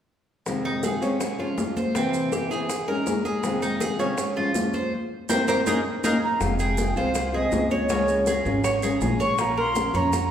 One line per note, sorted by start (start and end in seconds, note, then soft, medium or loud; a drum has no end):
0.46 0.82 F2 medium
0.46 0.83 C3 medium
0.46 0.82 D#3 medium
0.46 0.82 G#3 medium
0.46 0.83 C4 medium
0.46 0.83 F4 medium
0.46 high bongo medium
0.46 high conga soft
0.46 maracas medium
0.65 0.83 D#4 medium
0.65 high bongo soft
0.65 high conga soft
0.83 1.01 D#3 soft
0.83 1.01 G#3 soft
0.83 1.01 C4 soft
0.83 1.00 F4 soft
0.83 1.02 G#4 medium
0.83 high bongo soft
0.83 high conga medium
0.83 maracas medium
1.01 1.20 C3 soft
1.01 1.20 D#3 soft
1.01 1.19 G#3 medium
1.01 1.20 C4 medium
1.01 1.38 C#4 medium
1.01 1.19 F4 medium
1.01 high conga soft
1.01 maracas soft
1.20 muted nylon-string guitar stroke medium
1.20 high bongo medium
1.20 high conga soft
1.20 maracas medium
1.38 1.56 F3 soft
1.38 1.57 G#3 soft
1.38 1.57 C#4 medium
1.38 1.57 F4 soft
1.38 1.75 F4 medium
1.38 high bongo soft
1.38 high conga soft
1.57 1.94 F3 soft
1.57 1.94 G#3 soft
1.57 1.95 C#4 soft
1.57 1.95 F4 soft
1.57 high bongo soft
1.57 low bongo medium
1.57 high conga medium
1.57 maracas medium
1.76 1.95 C5 medium
1.76 high bongo soft
1.76 high conga medium
1.76 maracas soft
1.94 2.31 C3 medium
1.94 2.31 E3 medium
1.94 2.31 A#3 medium
1.94 2.31 C4 medium
1.94 2.32 C4 medium
1.94 2.32 E4 medium
1.94 high bongo medium
1.94 high conga soft
1.94 maracas medium
2.14 high bongo soft
2.14 high conga soft
2.14 maracas soft
2.32 2.50 E3 soft
2.32 2.50 A#3 soft
2.32 2.50 C4 soft
2.32 2.49 E4 soft
2.32 2.50 G4 medium
2.32 high bongo soft
2.32 high conga soft
2.32 maracas medium
2.50 2.68 E3 soft
2.50 2.69 A#3 medium
2.50 2.69 C4 soft
2.50 2.68 E4 medium
2.50 2.87 G#4 medium
2.50 high conga soft
2.50 maracas soft
2.69 muted nylon-string guitar stroke medium
2.69 high bongo medium
2.69 high conga soft
2.69 maracas medium
2.87 3.05 G#3 soft
2.87 3.06 C#4 soft
2.87 3.06 D#4 medium
2.87 3.05 G#4 medium
2.87 3.24 A#4 medium
2.87 high bongo soft
2.87 high conga soft
3.06 3.43 G#3 soft
3.06 3.43 C#4 soft
3.06 3.43 D#4 soft
3.06 3.44 G#4 medium
3.06 high bongo soft
3.06 low bongo medium
3.06 high conga medium
3.06 maracas medium
3.25 3.61 G#4 medium
3.25 high bongo soft
3.25 high conga medium
3.25 maracas soft
3.43 3.80 F2 medium
3.43 3.80 C3 medium
3.43 3.79 D#3 medium
3.43 3.80 G#3 medium
3.43 3.81 C4 medium
3.43 3.81 F4 medium
3.43 high bongo medium
3.43 high conga soft
3.43 maracas medium
3.62 3.80 D#4 medium
3.62 high bongo soft
3.62 high conga soft
3.62 maracas medium
3.80 3.99 D#3 soft
3.80 3.99 G#3 soft
3.80 3.98 C4 soft
3.80 3.98 F4 soft
3.80 3.99 G#4 medium
3.80 high bongo medium
3.80 high conga medium
3.80 maracas medium
3.99 4.18 C3 soft
3.99 4.18 D#3 medium
3.99 4.17 G#3 medium
3.99 4.17 C4 soft
3.99 4.36 C#4 medium
3.99 4.17 F4 medium
3.99 high conga soft
3.99 maracas soft
4.18 muted nylon-string guitar stroke soft
4.18 high bongo medium
4.18 high conga soft
4.18 maracas medium
4.36 4.54 F3 soft
4.36 4.54 G#3 medium
4.36 4.55 C#4 medium
4.36 4.54 F4 medium
4.36 4.73 F4 medium
4.36 high bongo soft
4.36 high conga soft
4.55 4.91 F3 soft
4.55 4.92 G#3 soft
4.55 4.92 C#4 soft
4.55 4.92 F4 soft
4.55 high bongo soft
4.55 low bongo medium
4.55 high conga medium
4.55 maracas medium
4.73 4.92 C5 medium
4.73 high bongo soft
4.73 high conga medium
4.73 maracas soft
5.29 5.41 A#3 medium
5.29 5.42 C4 medium
5.29 5.41 E4 medium
5.29 5.41 G4 medium
5.29 5.41 A#4 medium
5.29 5.41 C5 medium
5.29 low bongo medium
5.29 high conga medium
5.29 maracas medium
5.48 5.60 A#3 medium
5.48 5.60 C4 medium
5.48 5.60 E4 medium
5.48 5.60 G4 medium
5.48 5.60 A#4 medium
5.48 5.60 C5 medium
5.48 low bongo medium
5.48 high conga medium
5.48 maracas medium
5.66 5.79 A#3 medium
5.66 5.79 C#4 medium
5.66 5.79 D#4 medium
5.66 5.79 G#4 medium
5.66 5.79 A#4 medium
5.66 low bongo medium
5.66 high conga medium
5.66 maracas medium
6.04 6.16 A#3 medium
6.04 6.16 C#4 medium
6.04 6.16 D#4 medium
6.04 6.16 G#4 medium
6.04 6.16 A#4 medium
6.04 low bongo medium
6.04 high conga medium
6.04 maracas medium
6.23 6.43 A#5 medium
6.40 6.93 F1 medium
6.40 6.77 C3 medium
6.40 6.76 F3 medium
6.40 6.77 G#3 medium
6.40 6.77 C4 medium
6.40 6.78 F4 medium
6.40 6.59 F5 medium
6.40 high bongo medium
6.40 maracas medium
6.59 6.96 G#4 medium
6.59 6.94 G5 medium
6.59 high bongo soft
6.59 high conga soft
6.59 maracas medium
6.77 6.95 F3 soft
6.77 6.96 G#3 soft
6.77 6.96 C4 soft
6.77 6.95 F4 soft
6.77 high bongo medium
6.77 high conga medium
6.77 maracas medium
6.96 7.48 C2 medium
6.96 7.13 F3 soft
6.96 7.14 G#3 soft
6.96 7.14 C4 soft
6.96 7.14 F4 medium
6.96 7.33 C5 medium
6.96 7.36 F5 medium
6.96 high conga soft
6.96 maracas soft
7.14 muted nylon-string guitar stroke medium
7.14 high bongo medium
7.14 high conga soft
7.14 maracas medium
7.33 7.51 F3 soft
7.33 7.51 G#3 soft
7.33 7.52 C4 medium
7.33 7.51 F4 medium
7.33 7.70 G#4 medium
7.33 7.70 D#5 medium
7.33 high bongo soft
7.33 high conga soft
7.52 8.39 C#2 medium
7.52 7.89 F3 soft
7.52 7.89 G#3 soft
7.52 7.89 C4 soft
7.52 7.90 F4 soft
7.52 high bongo soft
7.52 low bongo medium
7.52 high conga medium
7.52 maracas medium
7.71 8.78 C#5 medium
7.71 7.89 C#5 medium
7.71 high bongo soft
7.71 high conga medium
7.71 maracas soft
7.89 8.26 C#3 medium
7.89 8.26 F3 medium
7.89 8.25 G#3 medium
7.89 8.26 C#4 medium
7.89 8.27 F4 medium
7.89 8.27 A#4 medium
7.89 high bongo medium
7.89 high conga soft
7.89 maracas medium
8.08 high bongo soft
8.08 high conga soft
8.08 maracas soft
8.26 8.44 G#3 soft
8.26 8.45 C#4 soft
8.26 8.44 F4 soft
8.26 8.63 G#4 medium
8.26 8.44 A#4 soft
8.26 high bongo medium
8.26 high conga medium
8.26 maracas medium
8.45 8.97 G#1 medium
8.45 8.63 F3 soft
8.45 8.63 G#3 soft
8.45 8.63 C#4 medium
8.45 8.63 F4 medium
8.45 8.63 A#4 medium
8.45 high conga soft
8.45 maracas soft
8.64 8.82 C#5 medium
8.64 muted nylon-string guitar stroke medium
8.64 high bongo medium
8.64 high conga soft
8.64 maracas medium
8.82 9.01 F3 soft
8.82 9.00 G#3 soft
8.82 9.01 C#4 medium
8.82 9.00 F4 medium
8.82 9.19 G#4 medium
8.82 9.00 A#4 medium
8.82 high bongo soft
8.82 high conga soft
8.82 maracas soft
9.01 9.88 A#1 medium
9.01 9.38 G#3 soft
9.01 9.38 C#4 soft
9.01 9.38 F4 soft
9.01 9.39 A#4 soft
9.01 high bongo soft
9.01 low bongo medium
9.01 high conga medium
9.01 maracas medium
9.20 9.56 C#5 medium
9.20 9.42 C#6 medium
9.20 high bongo soft
9.20 maracas soft
9.38 9.74 F3 medium
9.38 9.75 A#3 medium
9.38 9.76 C#4 medium
9.38 9.76 F4 medium
9.38 9.58 A#5 loud
9.38 high bongo medium
9.38 high conga soft
9.38 maracas medium
9.57 9.93 A#4 medium
9.57 9.97 C6 loud
9.57 high bongo soft
9.57 high conga soft
9.75 9.93 F3 soft
9.75 9.94 A#3 soft
9.75 9.94 C#4 soft
9.75 9.93 F4 soft
9.75 high bongo medium
9.75 high conga medium
9.75 maracas medium
9.94 10.31 F2 medium
9.94 10.12 A#3 soft
9.94 10.12 C#4 medium
9.94 10.12 F4 soft
9.94 10.30 C#5 medium
9.94 10.31 A#5 medium
9.94 high conga soft
9.94 maracas soft
10.13 muted nylon-string guitar stroke medium
10.13 high bongo medium
10.13 high conga soft
10.13 maracas medium